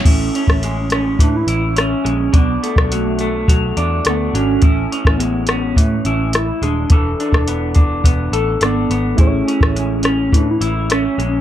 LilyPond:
<<
  \new Staff \with { instrumentName = "Reed electric piano" } { \time 4/4 \key a \major \tempo 4 = 105 r1 | r1 | r1 | r1 |
<a e' gis' c'' cis''>1 | }
  \new Staff \with { instrumentName = "Soft synth lead" } { \time 4/4 \key a \major cis'4 cis'4 d'16 e'8. cis'4 | b4 a4. r8 b8 cis'8~ | cis'4 b8 b8 a8 cis'8 e'8 d'8~ | d'4. r4. b4 |
cis'4 cis'4 d'16 e'8. cis'4 | }
  \new Staff \with { instrumentName = "Clean electric guitar" } { \time 4/4 \key a \major <a, e'>8 cis'8 gis8 cis'8 e8 e'8 cis'8 gis8 | <b, d'>8 a8 fis8 a8 fis8 d'8 a8 fis8 | <a, e'>8 cis'8 gis8 cis'8 e8 e'4 gis8 | <e a'>8 d'8 b8 d'8 b8 a'8 d'8 b8 |
<a, e'>8 cis'8 gis8 cis'8 e8 e'8 cis'8 gis8 | }
  \new Staff \with { instrumentName = "Picked electric bass" } { \clef bass \time 4/4 \key a \major a,,8 r16 a,,4~ a,,16 a,8 a,,4 bes,,8 | b,,8 r16 b,,4~ b,,16 b,,8 e,8 d,8 gis,,8 | a,,8 r16 a,,4~ a,,16 a,8 a,,4 dis,,8 | e,,8 r16 e,,4~ e,,16 e,,8 a,,8 gis,,8 gis,,8 |
a,,8 r16 a,,4~ a,,16 a,8 a,,4 bes,,8 | }
  \new DrumStaff \with { instrumentName = "Drums" } \drummode { \time 4/4 <cymc hh bd>8 hh16 <bd ss>16 hh8 <hh ss>8 <hh bd>8 hh8 <hh ss>8 hh8 | <hh bd>8 hh16 <bd ss>16 hh8 hh8 <hh bd>8 hh8 <hh ss>8 hh8 | <hh bd>8 hh16 <bd ss>16 hh8 <hh ss>8 <hh bd>8 hh8 <hh ss>8 hh8 | <hh bd>8 hh16 <bd ss>16 hh8 <hh bd>8 <hh bd>8 hh8 <hh ss>8 hh8 |
<hh bd>8 hh16 <bd ss>16 hh8 <hh ss>8 <hh bd>8 hh8 <hh ss>8 hh8 | }
>>